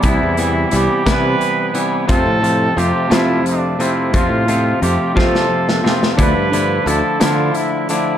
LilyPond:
<<
  \new Staff \with { instrumentName = "Trumpet" } { \time 6/8 \key f \lydian \tempo 4. = 59 e'4 g'8 b'4 r8 | a'4 g'8 e'8 d'8 e'8 | f'4 g'8 a'4 r8 | b'4 a'8 f'8 e'8 e'8 | }
  \new Staff \with { instrumentName = "Clean electric guitar" } { \clef bass \time 6/8 \key f \lydian <c e g b e'>8 <c e g b e'>8 <c e g b e'>8 <c e g b e'>4 <c e g b e'>8 | <f, c f a c' f'>8 <f, c f a c' f'>8 <f, c f a c' f'>8 <f, c f a c' f'>4 <f, c f a c' f'>8 | <f, c f a c' f'>8 <f, c f a c' f'>8 <f, c f a c' f'>8 <f, c f a c' f'>4 <f, c f a c' f'>8 | <d f a d' e'>8 <d f a d' e'>8 <d f a d' e'>8 <d f a d' e'>4 <d f a d' e'>8 | }
  \new Staff \with { instrumentName = "Fingered electric bass" } { \clef bass \time 6/8 \key f \lydian c,16 e,8. c,16 r16 c8 r4 | f,16 a,8. f,16 r16 f8 r4 | f,16 a,8. f,16 r16 f8 r4 | d,16 g,8. d,16 r16 d8 r4 | }
  \new DrumStaff \with { instrumentName = "Drums" } \drummode { \time 6/8 <hh bd>8 hh8 hh8 <hh bd sn>8 hh8 hh8 | <hh bd>8 hh8 hh8 <hh sn>8 hh8 hh8 | <hh bd>8 hh8 hh8 <bd sn>16 sn8 sn16 sn16 sn16 | <hh bd>8 hh8 hh8 <hh sn>8 hh8 hh8 | }
>>